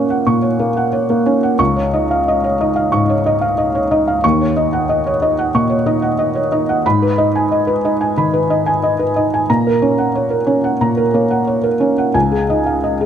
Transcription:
Already playing: A#2 A#3 C#4 C#5 F#5 C#6
0.10 F#5
0.27 A#2 C#6
0.42 C#5
0.60 A#3
0.77 F#5
0.93 C#5
1.10 A#3
1.26 C#4 C#5
1.43 F#5
1.59 C#2 C#6
1.76 C#5
1.93 D#4 D#5
2.11 F5
2.28 D#5
2.44 C#5
2.60 D#4 D#5
2.76 F5
2.92 G#2 C#6
3.10 C#5
3.26 D#4 D#5
3.41 F5
3.58 D#5
3.75 C#5
3.91 D#4 D#5
4.08 F5
4.24 D#2 C#6
4.41 C#5
4.57 D#4 D#5
4.73 F#5
4.89 D#5
5.07 C#5
5.22 D#4 D#5
5.39 F#5
5.54 A#2 C#6
5.70 C#5
5.86 D#4 D#5
6.02 F#5
6.19 D#5
6.35 C#5
6.52 D#4 D#5
6.69 F#5
6.86 G#2 B5
7.02 B4
7.18 D#4 D#5
7.36 G#5
7.52 D#5
7.67 B4
7.85 D#4 D#5
8.01 G#5
8.17 D#3 B5
8.33 B4
8.50 D#4 D#5
8.66 G#5
8.83 D#5
8.99 B4
9.16 D#4 D#5
9.34 G#5
9.50 A#2 A#5
9.67 A#4
9.82 C#4 C#5
9.98 F#5
10.15 C#5
10.30 A#4
10.46 C#4 C#5
10.64 F#5
10.81 A#2 A#5
10.97 A#4
11.14 A#3 C#5
11.31 F#5
11.47 C#5
11.63 A#4
11.80 C#4 C#5
11.98 F#5
12.14 C#2 G#5
12.32 G#4
12.50 D#4 D#5
12.66 F5
12.84 D#5
13.01 G#4

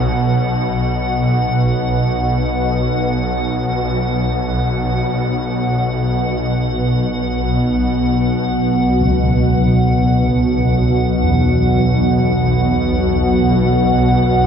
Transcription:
Already playing: B1 B2 F#5
6.24 B1 B2 B3 F#5
7.35 F#4
9.01 C#2
10.44 F#5
11.24 E2

